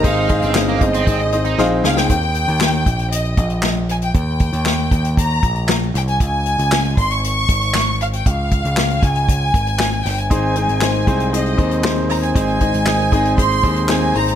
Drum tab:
HH |x-xx--xxxxxx----|xxxx--xxxxxx--xx|x-xx--xxxxxx--xx|x-xx-xxxx-xx--xx|
CP |----x-----------|----x-------x---|----x-------x---|----x-------x---|
SD |----o-------o-oo|----o-------o-o-|----o-------o-o-|----o-------o---|
BD |o-o---o-o-------|o-----o---o-----|o-o---o-o-o-----|o-----o---o-----|

HH |x-xx-xxxx-xx-xox|x-xx-xxxxxxx--ox|xxxx-xxxxxxx--ox|
CP |----x-------x---|----x-------x---|----x-------x---|
SD |----o-------o-o-|----o-------o-o-|----o-------o---|
BD |o-o---o-o-o-----|o-----o---o-----|o-o---o-o-o-----|